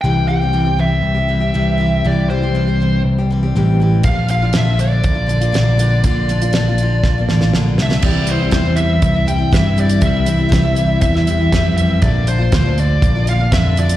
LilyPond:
<<
  \new Staff \with { instrumentName = "Lead electric guitar" } { \time 4/4 \key c \mixolydian \tempo 4 = 120 g''8 g''4 e''2~ e''8 | d''8 c''4. r2 | f''8 f''8 e''8 d''2~ d''8~ | d''2. r8 e''8 |
d''8 c''8 c''8 e''4 g''8 e''8 d''8 | e''2 e''4. e''8 | d''8 c''8 c''8 d''4 f''8 e''8 d''8 | }
  \new Staff \with { instrumentName = "Steel-string acoustic guitar" } { \time 4/4 \key c \mixolydian <c e g c' g'>8 <e g c' g'>16 <g c' g'>16 <c e g c' g'>16 <g c' g'>16 <e g c' g'>8. <g c' g'>16 <e g c' g'>16 <g c' g'>16 <c e g c' g'>8 <e g c' g'>8 | <c e g c' g'>8 <e g c' g'>16 <g c' g'>16 <c e g c' g'>16 <g c' g'>16 <e g c' g'>8. <g c' g'>16 <e g c' g'>16 <g c' g'>16 <c e g c' g'>8 <e g c' g'>8 | <bes, d bes d' f'>8 <d bes d' f'>16 <bes d' f'>16 <bes, d bes d' f'>16 <bes d' f'>16 <d bes d' f'>8. <bes d' f'>16 <d bes d' f'>16 <bes d' f'>16 <bes, d bes d' f'>8 <d bes d' f'>8 | <bes, d bes d' f'>8 <d bes d' f'>16 <bes d' f'>16 <bes, d bes d' f'>16 <bes d' f'>16 <d bes d' f'>8. <bes d' f'>16 <d bes d' f'>16 <bes d' f'>16 <bes, d bes d' f'>8 <d bes d' f'>8 |
<c e g c' e'>8 <e g c' e'>16 <g c' e'>16 <c e g c' e'>16 <g c' e'>16 <e g c' e'>8. <g c' e'>16 <e g c' e'>16 <g c' e'>16 <c e g c' e'>8 <e g c' e'>16 <g c' e'>16 | <c e g c' e'>8 <e g c' e'>16 <g c' e'>16 <c e g c' e'>16 <g c' e'>16 <e g c' e'>8. <g c' e'>16 <e g c' e'>16 <g c' e'>16 <c e g c' e'>8 <e g c' e'>8 | <bes, d bes d' f'>8 <d bes d' f'>16 <bes d' f'>16 <bes, d bes d' f'>16 <bes d' f'>16 <d bes d' f'>8. <bes d' f'>16 <d bes d' f'>16 <bes d' f'>16 <bes, d bes d' f'>8 <d bes d' f'>16 <bes d' f'>16 | }
  \new Staff \with { instrumentName = "Picked electric bass" } { \clef bass \time 4/4 \key c \mixolydian c,2 c,4 c,4 | c,2 c,4 a,,4 | bes,,2 bes,,4 bes,,4 | bes,,2 bes,,8 a,,8 bes,,8 c,8 |
c,4 e,4 c,4 g,4 | c,4 c,4 e,4 f,4 | bes,,4 d,4 bes,,4 f,4 | }
  \new DrumStaff \with { instrumentName = "Drums" } \drummode { \time 4/4 r4 r4 r4 r4 | r4 r4 r4 r4 | <hh bd>8 hh8 <hh sn>8 hh8 <hh bd>8 hh16 hh16 <hh sn>8 hh8 | <hh bd>8 hh16 hh16 <hh sn>8 hh8 <bd sn>8 sn16 sn16 sn8 sn16 sn16 |
<cymc bd>8 hh8 <hh bd sn>8 hh8 <hh bd>8 hh8 <hh bd sn>8 hh16 hh16 | <hh bd>8 hh8 <hh bd sn>8 hh8 <hh bd>16 sn16 hh8 <hh bd sn>8 hh8 | <hh bd>8 hh8 <hh bd sn>8 hh8 <hh bd>8 hh8 <hh bd sn>8 hh16 hh16 | }
>>